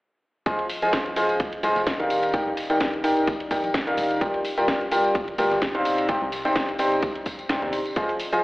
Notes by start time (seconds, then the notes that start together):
0.46 F1 F3 F4 G#4 C5 D#5 G#5, kick, closed hi-hat, ride, tambourine
0.59 ride
0.69 open hi-hat, tambourine
0.82 F3 F4 G#4 C5 D#5 G#5, closed hi-hat, tambourine
0.93 kick, snare, closed hi-hat, ride, tambourine
1.06 closed hi-hat
1.16 F3 F4 G#4 C5 D#5 G#5, open hi-hat, ride, tambourine
1.29 closed hi-hat, tambourine
1.40 F1, kick, closed hi-hat, ride, tambourine
1.53 closed hi-hat, ride
1.63 C2 F3 F4 G#4 C5 D#5 G#5, open hi-hat, ride, tambourine
1.76 F1, snare, closed hi-hat, tambourine
1.87 kick, snare, closed hi-hat, ride, tambourine
2.00 D#3 D#4 G4 A#4 D5 F5, closed hi-hat, ride
2.10 open hi-hat, ride, tambourine
2.22 closed hi-hat, ride, tambourine
2.33 D#3 D#4 G4 A#4 D5 G5, kick, closed hi-hat, ride, tambourine
2.46 D#1
2.57 snare, open hi-hat, ride, tambourine
2.70 D#3 D#4 G4 A#4 D5 G5, closed hi-hat, tambourine
2.80 kick, snare, closed hi-hat, ride, tambourine
2.93 closed hi-hat, ride
3.04 D#3 D#4 G4 A#4 D5 G5, open hi-hat, ride, tambourine
3.17 closed hi-hat, tambourine
3.27 kick, closed hi-hat, ride, tambourine
3.40 closed hi-hat, ride
3.51 D#1 D#3 D#4 G4 A#4 D5 G5, kick, open hi-hat, ride, tambourine
3.64 A#1, closed hi-hat, tambourine
3.74 kick, snare, closed hi-hat, ride, tambourine
3.87 D#3 D#4 G4 A#4 D5 F5, snare, closed hi-hat
3.97 D#1, open hi-hat, ride, tambourine
4.10 closed hi-hat, tambourine
4.21 G1 G3 F4 G4 A#4 D5 G5, kick, closed hi-hat, ride, tambourine
4.34 ride
4.45 open hi-hat, tambourine
4.57 G3 F4 G4 A#4 D5 G5, closed hi-hat, tambourine
4.68 kick, snare, closed hi-hat, ride, tambourine
4.81 closed hi-hat
4.91 G3 F4 G4 A#4 D5 G5, open hi-hat, ride, tambourine
5.04 closed hi-hat, tambourine
5.15 G1, kick, closed hi-hat, ride, tambourine
5.28 closed hi-hat, ride
5.38 D2 G3 F4 G4 A#4 D5 G5, open hi-hat, ride, tambourine
5.51 G1, snare, closed hi-hat, tambourine
5.62 kick, snare, closed hi-hat, ride, tambourine
5.75 C3 D#4 G4 C5 D5 F5, closed hi-hat, ride
5.85 open hi-hat, ride, tambourine
5.98 closed hi-hat, ride, tambourine
6.09 C3 D#4 G4 C5 D5 G5, kick, closed hi-hat, ride, tambourine
6.22 C2
6.32 snare, open hi-hat, ride, tambourine
6.45 C3 D#4 G4 C5 D5 G5, closed hi-hat, tambourine
6.56 kick, snare, closed hi-hat, ride, tambourine
6.68 closed hi-hat, ride
6.79 C3 D#4 G4 C5 D5 G5, open hi-hat, ride, tambourine
6.92 closed hi-hat, tambourine
7.02 kick, closed hi-hat, ride, tambourine
7.15 closed hi-hat, ride
7.26 kick, open hi-hat, ride, tambourine
7.38 closed hi-hat, tambourine
7.49 G1 C3 D#4 G4 C5 D5 G5, kick, snare, closed hi-hat, ride, tambourine
7.62 D#2 C3 D#4 G4 C5 D5 C6, snare, closed hi-hat
7.73 G1, open hi-hat, ride, tambourine
7.86 closed hi-hat, tambourine
7.96 F1 F3 F4 G#4 C5 D#5 G#5, kick, closed hi-hat, ride, tambourine, cabasa
8.09 ride, cabasa
8.20 open hi-hat, tambourine, cabasa
8.32 F3 F4 G#4 C5 D#5 G#5, closed hi-hat, tambourine, cabasa